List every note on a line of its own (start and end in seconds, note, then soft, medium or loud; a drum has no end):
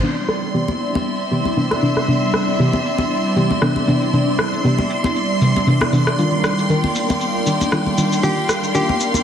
0.03 0.51 C3 medium
0.03 0.51 E3 medium
0.03 9.23 G3 medium
0.03 0.52 B3 medium
0.03 7.69 C4 medium
0.03 9.23 D4 medium
0.03 0.52 D4 medium
0.03 6.14 E4 medium
0.03 6.14 D5 medium
0.03 9.23 C6 medium
0.29 cross-stick medium
0.29 shaker medium
0.43 shaker soft
0.54 0.66 C3 medium
0.54 0.66 E3 medium
0.54 0.66 B3 medium
0.54 0.67 G4 medium
0.54 9.23 D5 medium
0.54 shaker soft
0.68 high conga medium
0.73 6.18 E5 medium
0.80 shaker medium
0.95 high conga medium
1.06 shaker soft
1.31 1.43 C3 medium
1.31 1.43 E3 medium
1.31 1.43 B3 medium
1.31 1.44 G4 medium
1.31 shaker medium
1.45 high conga medium
1.45 shaker soft
1.56 1.79 C3 medium
1.56 1.80 E3 medium
1.56 1.80 B3 medium
1.56 1.80 D4 medium
1.56 shaker soft
1.71 cross-stick medium
1.71 high conga soft
1.82 2.05 C3 medium
1.82 2.05 E3 medium
1.82 2.05 B3 medium
1.82 2.05 D4 medium
1.82 shaker medium
1.97 cross-stick medium
1.97 shaker soft
2.08 2.56 C3 medium
2.08 2.57 E3 medium
2.08 2.57 B3 medium
2.08 2.57 D4 medium
2.08 shaker soft
2.34 cross-stick medium
2.34 shaker medium
2.48 shaker soft
2.59 2.71 C3 medium
2.59 2.71 E3 medium
2.59 2.72 B3 medium
2.59 2.72 G4 medium
2.59 shaker soft
2.73 high conga medium
2.85 shaker medium
2.98 high conga medium
2.98 shaker soft
3.11 shaker soft
3.36 3.48 C3 medium
3.36 3.48 E3 medium
3.36 3.48 B3 medium
3.36 3.49 G4 medium
3.36 shaker medium
3.51 high conga medium
3.51 shaker soft
3.61 3.85 C3 medium
3.61 3.85 E3 medium
3.61 3.85 B3 medium
3.61 3.85 D4 medium
3.61 cross-stick medium
3.61 shaker soft
3.76 high conga medium
3.87 4.10 C3 medium
3.87 4.10 E3 medium
3.87 4.10 B3 medium
3.87 4.11 D4 medium
3.87 shaker medium
4.02 shaker soft
4.13 4.62 C3 medium
4.13 4.62 E3 medium
4.13 4.62 B3 medium
4.13 4.62 D4 medium
4.13 shaker soft
4.39 cross-stick medium
4.39 shaker medium
4.53 shaker soft
4.64 4.76 C3 medium
4.64 4.77 E3 medium
4.64 4.77 B3 medium
4.64 4.77 G4 medium
4.64 shaker soft
4.78 high conga medium
4.90 shaker medium
5.04 high conga medium
5.04 shaker soft
5.16 shaker soft
5.41 5.53 C3 medium
5.41 5.54 E3 medium
5.41 5.54 B3 medium
5.41 5.54 G4 medium
5.41 shaker medium
5.56 high conga medium
5.56 shaker soft
5.67 5.90 C3 medium
5.67 5.90 E3 medium
5.67 5.90 B3 medium
5.67 5.90 D4 medium
5.67 shaker soft
5.81 cross-stick medium
5.81 high conga medium
5.92 6.15 C3 medium
5.92 6.15 E3 medium
5.92 6.16 B3 medium
5.92 6.16 D4 medium
5.92 shaker medium
6.07 cross-stick medium
6.07 shaker soft
6.18 6.67 D#3 medium
6.18 9.23 D#3 medium
6.18 6.67 G3 medium
6.18 9.23 A#3 medium
6.18 6.67 D4 medium
6.18 9.23 F4 medium
6.18 6.67 F4 medium
6.18 9.23 A#4 medium
6.18 shaker soft
6.44 9.23 G5 medium
6.44 cross-stick medium
6.44 shaker medium
6.58 shaker soft
6.69 6.82 D#3 medium
6.69 6.82 G3 medium
6.69 6.82 D4 medium
6.69 6.82 A#4 medium
6.69 9.23 F5 medium
6.69 shaker soft
6.84 high conga medium
6.95 shaker medium
7.10 high conga medium
7.10 shaker soft
7.21 shaker soft
7.46 7.58 D#3 medium
7.46 7.59 G3 medium
7.46 7.59 D4 medium
7.46 7.59 A#4 medium
7.46 shaker medium
7.61 high conga medium
7.61 shaker soft
7.72 7.95 D#3 medium
7.72 7.95 G3 medium
7.72 7.95 D4 medium
7.72 7.95 F4 medium
7.72 cross-stick medium
7.72 shaker soft
7.86 high conga medium
7.97 8.20 D#3 medium
7.97 8.21 G3 medium
7.97 8.21 D4 medium
7.97 8.21 F4 medium
7.97 shaker medium
8.12 shaker soft
8.23 8.72 D#3 medium
8.23 8.72 G3 medium
8.23 8.72 D4 medium
8.23 8.72 F4 medium
8.23 8.56 G4 medium
8.23 shaker soft
8.49 cross-stick medium
8.49 shaker medium
8.64 shaker soft
8.74 8.87 D#3 medium
8.74 8.87 G3 medium
8.74 8.87 D4 medium
8.74 9.07 G4 medium
8.74 8.87 A#4 loud
8.74 shaker soft
8.89 high conga medium
9.00 shaker medium
9.14 high conga medium
9.14 shaker soft